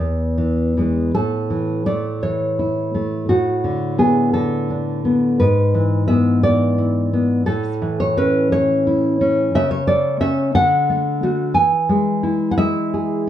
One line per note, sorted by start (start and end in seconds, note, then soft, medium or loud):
0.00 1.11 E2 soft
0.00 0.73 B4 medium
0.38 0.76 E3 soft
0.77 1.11 E3 soft
0.77 1.11 G#3 soft
1.15 3.24 A2 medium
1.15 1.83 A4 medium
1.50 1.86 E3 soft
1.86 2.93 A3 soft
1.86 2.20 D5 medium
2.23 3.29 E3 soft
2.23 3.24 C#5 medium
2.59 3.29 E4 soft
2.95 3.29 A3 soft
3.29 5.37 A2 soft
3.29 3.96 F#4 medium
3.64 4.33 D3 soft
3.98 5.04 B3 soft
3.98 4.32 G#4 medium
4.33 5.41 D3 soft
4.33 5.36 A4 medium
4.70 5.41 D4 soft
5.05 5.40 B3 soft
5.40 7.43 G#2 medium
5.40 6.06 B4 medium
5.74 6.42 E3 soft
6.08 7.12 B3 soft
6.08 6.42 E5 medium
6.43 7.46 E3 soft
6.43 7.42 D5 medium
6.78 7.47 E4 soft
7.13 7.46 B3 soft
7.46 9.49 A2 medium
7.46 7.97 A4 medium
7.82 8.51 E3 soft
8.00 8.17 C#5 medium
8.17 9.20 C#4 soft
8.17 8.50 B4 medium
8.52 9.53 E3 soft
8.52 9.50 C#5 medium
8.87 9.54 E4 soft
9.21 9.54 C#4 medium
9.55 10.53 C#3 medium
9.55 9.70 E5 loud
9.71 9.87 C#5 medium
9.87 10.19 A3 soft
9.87 10.20 D5 medium
10.20 10.52 A3 soft
10.20 10.52 C#4 medium
10.20 10.53 E5 medium
10.55 11.52 D3 medium
10.55 11.51 F#5 medium
10.89 11.22 A3 soft
11.23 11.53 A3 soft
11.23 11.53 F#4 medium
11.54 13.29 E3 medium
11.54 12.47 G#5 medium
11.89 12.57 G#3 medium
12.23 13.26 E4 medium
12.51 12.57 F#5 medium
12.58 13.29 G#3 soft
12.58 13.29 E5 medium
12.94 13.29 G#4 soft